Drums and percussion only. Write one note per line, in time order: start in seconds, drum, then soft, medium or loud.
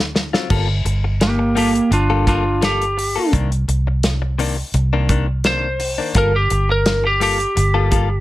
0.15 snare medium
0.34 snare medium
0.50 kick loud
0.50 crash medium
0.86 closed hi-hat medium
1.21 snare loud
1.21 closed hi-hat medium
1.57 open hi-hat medium
1.75 closed hi-hat soft
1.92 closed hi-hat medium
2.27 kick medium
2.27 closed hi-hat medium
2.62 snare loud
2.62 closed hi-hat medium
2.82 closed hi-hat soft
2.99 open hi-hat medium
3.33 kick medium
3.33 closed hi-hat medium
3.52 closed hi-hat soft
3.69 closed hi-hat medium
4.03 snare loud
4.03 closed hi-hat medium
4.39 open hi-hat medium
4.74 closed hi-hat medium
5.09 kick medium
5.09 closed hi-hat medium
5.44 snare medium
5.44 closed hi-hat medium
5.80 open hi-hat medium
6.15 kick loud
6.15 closed hi-hat medium
6.50 closed hi-hat medium
6.86 snare loud
6.86 closed hi-hat medium
7.21 open hi-hat medium
7.40 closed hi-hat soft
7.57 closed hi-hat medium
7.92 kick medium
7.92 closed hi-hat medium